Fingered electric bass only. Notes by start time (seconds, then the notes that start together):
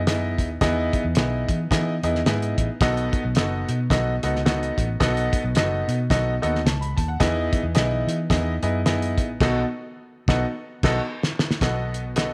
Already playing: F#2
0.39 D#2
0.61 E2
1.05 E2
1.16 B1
1.48 E3
1.70 E3
2.03 E2
2.26 G#2
2.58 A1
2.81 B1
3.25 B1
3.36 F#1
3.69 B2
3.90 B1
4.23 C#2
4.78 A1
5.01 B1
5.44 B1
5.55 F#1
5.88 B2
6.10 B1
6.43 D#2
6.65 C#2
6.98 D#2
7.20 E2
7.63 E2
7.76 B1
8.07 E3
8.30 E2
8.63 F#2
9.18 A1
9.40 B1
10.28 B1
10.83 B1
11.61 B1